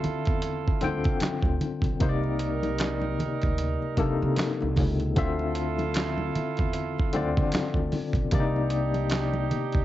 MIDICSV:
0, 0, Header, 1, 6, 480
1, 0, Start_track
1, 0, Tempo, 789474
1, 1220, Time_signature, 4, 2, 24, 8
1, 5988, End_track
2, 0, Start_track
2, 0, Title_t, "Horn section"
2, 0, Program_c, 0, 61
2, 0, Note_on_c, 0, 64, 68
2, 0, Note_on_c, 0, 65, 68
2, 0, Note_on_c, 0, 69, 76
2, 955, Note_off_c, 0, 64, 0
2, 955, Note_off_c, 0, 65, 0
2, 955, Note_off_c, 0, 69, 0
2, 1218, Note_on_c, 0, 70, 68
2, 1219, Note_on_c, 0, 55, 71
2, 1219, Note_on_c, 0, 63, 66
2, 2875, Note_off_c, 0, 55, 0
2, 2875, Note_off_c, 0, 63, 0
2, 2875, Note_off_c, 0, 70, 0
2, 3139, Note_on_c, 0, 64, 74
2, 3139, Note_on_c, 0, 69, 78
2, 3141, Note_on_c, 0, 65, 66
2, 4795, Note_off_c, 0, 64, 0
2, 4795, Note_off_c, 0, 69, 0
2, 4796, Note_off_c, 0, 65, 0
2, 5058, Note_on_c, 0, 62, 67
2, 5058, Note_on_c, 0, 63, 72
2, 5058, Note_on_c, 0, 67, 70
2, 5988, Note_off_c, 0, 62, 0
2, 5988, Note_off_c, 0, 63, 0
2, 5988, Note_off_c, 0, 67, 0
2, 5988, End_track
3, 0, Start_track
3, 0, Title_t, "Tine electric piano"
3, 0, Program_c, 1, 4
3, 0, Control_c, 1, 64, 127
3, 0, Note_on_c, 1, 50, 102
3, 0, Note_on_c, 1, 60, 79
3, 0, Note_on_c, 1, 65, 80
3, 0, Note_on_c, 1, 76, 96
3, 190, Note_off_c, 1, 50, 0
3, 193, Note_off_c, 1, 60, 0
3, 196, Note_off_c, 1, 65, 0
3, 198, Note_off_c, 1, 76, 0
3, 495, Note_on_c, 1, 50, 85
3, 501, Note_on_c, 1, 60, 88
3, 507, Note_on_c, 1, 65, 75
3, 513, Note_on_c, 1, 79, 99
3, 1166, Note_off_c, 1, 50, 0
3, 1169, Note_off_c, 1, 60, 0
3, 1172, Note_off_c, 1, 65, 0
3, 1175, Note_off_c, 1, 79, 0
3, 1214, Note_on_c, 1, 48, 86
3, 1219, Note_on_c, 1, 58, 83
3, 1224, Note_on_c, 1, 63, 80
3, 1227, Control_c, 1, 64, 0
3, 1231, Note_on_c, 1, 72, 85
3, 1271, Note_off_c, 1, 72, 0
3, 1271, Note_on_c, 1, 74, 93
3, 1332, Control_c, 1, 64, 127
3, 2108, Note_off_c, 1, 48, 0
3, 2111, Note_off_c, 1, 58, 0
3, 2113, Note_off_c, 1, 63, 0
3, 2136, Note_off_c, 1, 74, 0
3, 2414, Note_on_c, 1, 48, 86
3, 2420, Note_on_c, 1, 58, 80
3, 2426, Note_on_c, 1, 62, 59
3, 2430, Note_on_c, 1, 69, 91
3, 2464, Note_on_c, 1, 63, 77
3, 2468, Note_off_c, 1, 62, 0
3, 3085, Note_off_c, 1, 48, 0
3, 3088, Note_off_c, 1, 58, 0
3, 3093, Note_off_c, 1, 69, 0
3, 3110, Note_off_c, 1, 63, 0
3, 3135, Note_on_c, 1, 50, 91
3, 3141, Note_on_c, 1, 60, 85
3, 3146, Control_c, 1, 64, 0
3, 3146, Note_on_c, 1, 65, 88
3, 3152, Note_on_c, 1, 76, 93
3, 3267, Control_c, 1, 64, 127
3, 4028, Note_off_c, 1, 50, 0
3, 4031, Note_off_c, 1, 60, 0
3, 4034, Note_off_c, 1, 65, 0
3, 4037, Note_off_c, 1, 76, 0
3, 4336, Note_on_c, 1, 50, 97
3, 4342, Note_on_c, 1, 60, 83
3, 4347, Note_on_c, 1, 65, 82
3, 4353, Note_on_c, 1, 74, 95
3, 5006, Note_off_c, 1, 50, 0
3, 5009, Note_off_c, 1, 60, 0
3, 5012, Note_off_c, 1, 65, 0
3, 5015, Note_off_c, 1, 74, 0
3, 5057, Note_on_c, 1, 48, 97
3, 5062, Note_on_c, 1, 58, 86
3, 5066, Control_c, 1, 64, 0
3, 5068, Note_on_c, 1, 62, 72
3, 5075, Note_on_c, 1, 74, 94
3, 5108, Note_on_c, 1, 63, 88
3, 5109, Note_off_c, 1, 62, 0
3, 5159, Control_c, 1, 64, 127
3, 5950, Note_off_c, 1, 48, 0
3, 5952, Note_off_c, 1, 58, 0
3, 5959, Note_off_c, 1, 74, 0
3, 5975, Note_off_c, 1, 63, 0
3, 5988, End_track
4, 0, Start_track
4, 0, Title_t, "Upright bass"
4, 0, Program_c, 2, 32
4, 168, Note_on_c, 2, 40, 66
4, 358, Note_off_c, 2, 40, 0
4, 506, Note_on_c, 2, 38, 87
4, 615, Note_off_c, 2, 38, 0
4, 643, Note_on_c, 2, 50, 88
4, 723, Note_off_c, 2, 50, 0
4, 871, Note_on_c, 2, 38, 86
4, 955, Note_off_c, 2, 38, 0
4, 1109, Note_on_c, 2, 35, 77
4, 1194, Note_off_c, 2, 35, 0
4, 1223, Note_on_c, 2, 36, 92
4, 1917, Note_off_c, 2, 36, 0
4, 2089, Note_on_c, 2, 38, 74
4, 2278, Note_off_c, 2, 38, 0
4, 2418, Note_on_c, 2, 36, 81
4, 2531, Note_off_c, 2, 36, 0
4, 2568, Note_on_c, 2, 48, 96
4, 2645, Note_off_c, 2, 48, 0
4, 2808, Note_on_c, 2, 36, 99
4, 2905, Note_off_c, 2, 36, 0
4, 2905, Note_on_c, 2, 37, 94
4, 3146, Note_off_c, 2, 37, 0
4, 3146, Note_on_c, 2, 38, 102
4, 3838, Note_off_c, 2, 38, 0
4, 4010, Note_on_c, 2, 40, 78
4, 4198, Note_off_c, 2, 40, 0
4, 4347, Note_on_c, 2, 38, 89
4, 4456, Note_off_c, 2, 38, 0
4, 4484, Note_on_c, 2, 50, 105
4, 4563, Note_off_c, 2, 50, 0
4, 4710, Note_on_c, 2, 38, 80
4, 4795, Note_off_c, 2, 38, 0
4, 4947, Note_on_c, 2, 35, 90
4, 5033, Note_off_c, 2, 35, 0
4, 5063, Note_on_c, 2, 36, 90
4, 5757, Note_off_c, 2, 36, 0
4, 5929, Note_on_c, 2, 38, 69
4, 5988, Note_off_c, 2, 38, 0
4, 5988, End_track
5, 0, Start_track
5, 0, Title_t, "Muted upright bass strokes"
5, 25, Note_on_c, 9, 29, 49
5, 85, Note_off_c, 9, 29, 0
5, 744, Note_on_c, 9, 29, 45
5, 805, Note_off_c, 9, 29, 0
5, 1947, Note_on_c, 9, 29, 46
5, 2008, Note_off_c, 9, 29, 0
5, 3865, Note_on_c, 9, 29, 51
5, 3926, Note_off_c, 9, 29, 0
5, 4587, Note_on_c, 9, 29, 51
5, 4648, Note_off_c, 9, 29, 0
5, 5786, Note_on_c, 9, 29, 53
5, 5847, Note_off_c, 9, 29, 0
5, 5988, End_track
6, 0, Start_track
6, 0, Title_t, "Drums"
6, 24, Note_on_c, 9, 42, 59
6, 24, Note_on_c, 9, 64, 65
6, 84, Note_off_c, 9, 42, 0
6, 85, Note_off_c, 9, 64, 0
6, 155, Note_on_c, 9, 42, 35
6, 166, Note_on_c, 9, 36, 88
6, 216, Note_off_c, 9, 42, 0
6, 227, Note_off_c, 9, 36, 0
6, 256, Note_on_c, 9, 42, 90
6, 264, Note_on_c, 9, 62, 27
6, 317, Note_off_c, 9, 42, 0
6, 324, Note_off_c, 9, 62, 0
6, 412, Note_on_c, 9, 36, 99
6, 473, Note_off_c, 9, 36, 0
6, 493, Note_on_c, 9, 42, 64
6, 505, Note_on_c, 9, 63, 75
6, 554, Note_off_c, 9, 42, 0
6, 566, Note_off_c, 9, 63, 0
6, 635, Note_on_c, 9, 42, 33
6, 641, Note_on_c, 9, 36, 95
6, 696, Note_off_c, 9, 42, 0
6, 702, Note_off_c, 9, 36, 0
6, 732, Note_on_c, 9, 42, 91
6, 739, Note_on_c, 9, 62, 31
6, 739, Note_on_c, 9, 63, 67
6, 750, Note_on_c, 9, 38, 100
6, 750, Note_on_c, 9, 39, 89
6, 792, Note_off_c, 9, 42, 0
6, 800, Note_off_c, 9, 62, 0
6, 800, Note_off_c, 9, 63, 0
6, 810, Note_off_c, 9, 38, 0
6, 810, Note_off_c, 9, 39, 0
6, 867, Note_on_c, 9, 36, 78
6, 884, Note_on_c, 9, 62, 28
6, 928, Note_off_c, 9, 36, 0
6, 945, Note_off_c, 9, 62, 0
6, 979, Note_on_c, 9, 42, 58
6, 979, Note_on_c, 9, 63, 59
6, 979, Note_on_c, 9, 64, 56
6, 1040, Note_off_c, 9, 42, 0
6, 1040, Note_off_c, 9, 63, 0
6, 1040, Note_off_c, 9, 64, 0
6, 1105, Note_on_c, 9, 36, 89
6, 1119, Note_on_c, 9, 42, 36
6, 1166, Note_off_c, 9, 36, 0
6, 1179, Note_off_c, 9, 42, 0
6, 1218, Note_on_c, 9, 42, 79
6, 1221, Note_on_c, 9, 36, 113
6, 1222, Note_on_c, 9, 62, 27
6, 1222, Note_on_c, 9, 64, 61
6, 1279, Note_off_c, 9, 42, 0
6, 1282, Note_off_c, 9, 36, 0
6, 1283, Note_off_c, 9, 62, 0
6, 1283, Note_off_c, 9, 64, 0
6, 1359, Note_on_c, 9, 62, 29
6, 1420, Note_off_c, 9, 62, 0
6, 1455, Note_on_c, 9, 42, 74
6, 1515, Note_off_c, 9, 42, 0
6, 1598, Note_on_c, 9, 63, 60
6, 1601, Note_on_c, 9, 42, 34
6, 1658, Note_off_c, 9, 63, 0
6, 1661, Note_off_c, 9, 42, 0
6, 1693, Note_on_c, 9, 42, 98
6, 1702, Note_on_c, 9, 62, 33
6, 1708, Note_on_c, 9, 38, 108
6, 1708, Note_on_c, 9, 39, 103
6, 1754, Note_off_c, 9, 42, 0
6, 1763, Note_off_c, 9, 62, 0
6, 1768, Note_off_c, 9, 38, 0
6, 1768, Note_off_c, 9, 39, 0
6, 1833, Note_on_c, 9, 62, 29
6, 1833, Note_on_c, 9, 63, 56
6, 1894, Note_off_c, 9, 62, 0
6, 1894, Note_off_c, 9, 63, 0
6, 1943, Note_on_c, 9, 64, 70
6, 1946, Note_on_c, 9, 42, 56
6, 2004, Note_off_c, 9, 64, 0
6, 2006, Note_off_c, 9, 42, 0
6, 2077, Note_on_c, 9, 42, 33
6, 2087, Note_on_c, 9, 36, 83
6, 2138, Note_off_c, 9, 42, 0
6, 2148, Note_off_c, 9, 36, 0
6, 2178, Note_on_c, 9, 42, 82
6, 2183, Note_on_c, 9, 62, 27
6, 2239, Note_off_c, 9, 42, 0
6, 2244, Note_off_c, 9, 62, 0
6, 2324, Note_on_c, 9, 62, 27
6, 2385, Note_off_c, 9, 62, 0
6, 2415, Note_on_c, 9, 42, 69
6, 2416, Note_on_c, 9, 36, 92
6, 2425, Note_on_c, 9, 63, 68
6, 2475, Note_off_c, 9, 42, 0
6, 2477, Note_off_c, 9, 36, 0
6, 2486, Note_off_c, 9, 63, 0
6, 2653, Note_on_c, 9, 42, 84
6, 2658, Note_on_c, 9, 63, 66
6, 2671, Note_on_c, 9, 38, 116
6, 2671, Note_on_c, 9, 39, 88
6, 2714, Note_off_c, 9, 42, 0
6, 2719, Note_off_c, 9, 63, 0
6, 2732, Note_off_c, 9, 38, 0
6, 2732, Note_off_c, 9, 39, 0
6, 2799, Note_on_c, 9, 62, 28
6, 2860, Note_off_c, 9, 62, 0
6, 2895, Note_on_c, 9, 63, 60
6, 2895, Note_on_c, 9, 64, 57
6, 2899, Note_on_c, 9, 46, 52
6, 2903, Note_on_c, 9, 36, 92
6, 2956, Note_off_c, 9, 63, 0
6, 2956, Note_off_c, 9, 64, 0
6, 2960, Note_off_c, 9, 46, 0
6, 2964, Note_off_c, 9, 36, 0
6, 3038, Note_on_c, 9, 42, 33
6, 3099, Note_off_c, 9, 42, 0
6, 3138, Note_on_c, 9, 64, 66
6, 3139, Note_on_c, 9, 42, 86
6, 3142, Note_on_c, 9, 36, 112
6, 3199, Note_off_c, 9, 64, 0
6, 3200, Note_off_c, 9, 42, 0
6, 3203, Note_off_c, 9, 36, 0
6, 3279, Note_on_c, 9, 62, 29
6, 3340, Note_off_c, 9, 62, 0
6, 3374, Note_on_c, 9, 42, 77
6, 3435, Note_off_c, 9, 42, 0
6, 3516, Note_on_c, 9, 63, 63
6, 3520, Note_on_c, 9, 42, 30
6, 3577, Note_off_c, 9, 63, 0
6, 3581, Note_off_c, 9, 42, 0
6, 3613, Note_on_c, 9, 42, 96
6, 3623, Note_on_c, 9, 62, 34
6, 3627, Note_on_c, 9, 39, 104
6, 3628, Note_on_c, 9, 38, 122
6, 3673, Note_off_c, 9, 42, 0
6, 3684, Note_off_c, 9, 62, 0
6, 3688, Note_off_c, 9, 38, 0
6, 3688, Note_off_c, 9, 39, 0
6, 3755, Note_on_c, 9, 62, 33
6, 3755, Note_on_c, 9, 63, 65
6, 3816, Note_off_c, 9, 62, 0
6, 3816, Note_off_c, 9, 63, 0
6, 3863, Note_on_c, 9, 42, 63
6, 3864, Note_on_c, 9, 64, 64
6, 3924, Note_off_c, 9, 42, 0
6, 3925, Note_off_c, 9, 64, 0
6, 3995, Note_on_c, 9, 42, 34
6, 4006, Note_on_c, 9, 36, 87
6, 4055, Note_off_c, 9, 42, 0
6, 4067, Note_off_c, 9, 36, 0
6, 4094, Note_on_c, 9, 42, 79
6, 4155, Note_off_c, 9, 42, 0
6, 4246, Note_on_c, 9, 62, 32
6, 4253, Note_on_c, 9, 36, 82
6, 4307, Note_off_c, 9, 62, 0
6, 4313, Note_off_c, 9, 36, 0
6, 4333, Note_on_c, 9, 42, 71
6, 4345, Note_on_c, 9, 63, 74
6, 4394, Note_off_c, 9, 42, 0
6, 4406, Note_off_c, 9, 63, 0
6, 4482, Note_on_c, 9, 36, 99
6, 4542, Note_off_c, 9, 36, 0
6, 4571, Note_on_c, 9, 42, 90
6, 4581, Note_on_c, 9, 63, 71
6, 4589, Note_on_c, 9, 38, 110
6, 4589, Note_on_c, 9, 39, 86
6, 4631, Note_off_c, 9, 42, 0
6, 4642, Note_off_c, 9, 63, 0
6, 4649, Note_off_c, 9, 38, 0
6, 4649, Note_off_c, 9, 39, 0
6, 4706, Note_on_c, 9, 36, 69
6, 4723, Note_on_c, 9, 62, 27
6, 4767, Note_off_c, 9, 36, 0
6, 4784, Note_off_c, 9, 62, 0
6, 4815, Note_on_c, 9, 46, 43
6, 4820, Note_on_c, 9, 63, 66
6, 4820, Note_on_c, 9, 64, 62
6, 4876, Note_off_c, 9, 46, 0
6, 4881, Note_off_c, 9, 63, 0
6, 4881, Note_off_c, 9, 64, 0
6, 4944, Note_on_c, 9, 36, 82
6, 4954, Note_on_c, 9, 42, 36
6, 5005, Note_off_c, 9, 36, 0
6, 5015, Note_off_c, 9, 42, 0
6, 5054, Note_on_c, 9, 42, 97
6, 5060, Note_on_c, 9, 36, 117
6, 5064, Note_on_c, 9, 62, 30
6, 5064, Note_on_c, 9, 64, 66
6, 5115, Note_off_c, 9, 42, 0
6, 5121, Note_off_c, 9, 36, 0
6, 5125, Note_off_c, 9, 62, 0
6, 5125, Note_off_c, 9, 64, 0
6, 5205, Note_on_c, 9, 62, 29
6, 5266, Note_off_c, 9, 62, 0
6, 5290, Note_on_c, 9, 42, 73
6, 5351, Note_off_c, 9, 42, 0
6, 5438, Note_on_c, 9, 42, 31
6, 5438, Note_on_c, 9, 63, 62
6, 5498, Note_off_c, 9, 42, 0
6, 5499, Note_off_c, 9, 63, 0
6, 5531, Note_on_c, 9, 42, 91
6, 5545, Note_on_c, 9, 38, 127
6, 5545, Note_on_c, 9, 39, 91
6, 5545, Note_on_c, 9, 62, 35
6, 5591, Note_off_c, 9, 42, 0
6, 5606, Note_off_c, 9, 38, 0
6, 5606, Note_off_c, 9, 39, 0
6, 5606, Note_off_c, 9, 62, 0
6, 5676, Note_on_c, 9, 62, 31
6, 5676, Note_on_c, 9, 63, 61
6, 5737, Note_off_c, 9, 62, 0
6, 5737, Note_off_c, 9, 63, 0
6, 5782, Note_on_c, 9, 64, 65
6, 5783, Note_on_c, 9, 42, 57
6, 5843, Note_off_c, 9, 64, 0
6, 5844, Note_off_c, 9, 42, 0
6, 5913, Note_on_c, 9, 42, 34
6, 5926, Note_on_c, 9, 36, 80
6, 5973, Note_off_c, 9, 42, 0
6, 5987, Note_off_c, 9, 36, 0
6, 5988, End_track
0, 0, End_of_file